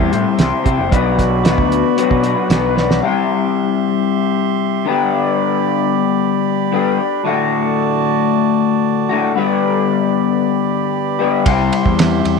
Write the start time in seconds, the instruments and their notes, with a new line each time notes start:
Already playing: clean electric guitar C3 G3 C4 E4 G4, harmonium G4 E5 C6
0.11 fingered electric bass A2, clean electric guitar C4 E4 G4 C5, closed hi-hat
0.37 fingered electric bass C2, clean electric guitar C4 E4 G4 C5, snare, closed hi-hat
0.64 fingered electric bass C3, clean electric guitar C4 E4 G4 C5, kick, closed hi-hat
0.79 fingered electric bass F#1
0.90 fingered electric bass B1, clean electric guitar B2 F#3 B3 D4 F#4 B4, harmonium F#4 D5 B5, kick, closed hi-hat
1.19 kick, snare, closed hi-hat
1.44 clean electric guitar B3 D4 F#4 B4, snare, closed hi-hat
1.58 fingered electric bass D2, kick
1.72 closed hi-hat
1.96 clean electric guitar B2 F#3 B3 D4 F#4 B4, closed hi-hat
2.10 fingered electric bass B2, kick
2.23 clean electric guitar B3 D4 F#4 B4, closed hi-hat
2.49 fingered electric bass B1, clean electric guitar B3 D4 F#4 B4, snare, closed hi-hat
2.75 clean electric guitar B3 D4 F#4 B4, snare
2.91 snare
3.01 clean electric guitar C3 G3 C4 E4 G4 C5
3.05 harmonium G4 E5 C6
4.85 clean electric guitar G2 D3 G3 B3 D4 G4, harmonium D5
4.89 harmonium B5
6.72 clean electric guitar G2 D3 G3 B3 D4 G4
7.23 clean electric guitar D2 A2 D3 A3 F#4, harmonium F#4 D5 A5
9.09 clean electric guitar D2 A2 D3 A3 F#4
9.35 clean electric guitar G2 D3 G3 B3 D4 G4, harmonium G4 D5 B5
11.19 clean electric guitar G2 D3 G3 B3 D4 G4
11.44 fingered electric bass C2, clean electric guitar C3 G3 C4 E4 G4 C5, harmonium G4 E5 C6, kick, ride
11.73 ride
11.85 fingered electric bass E2, kick
11.99 snare, ride
12.25 fingered electric bass E2, ride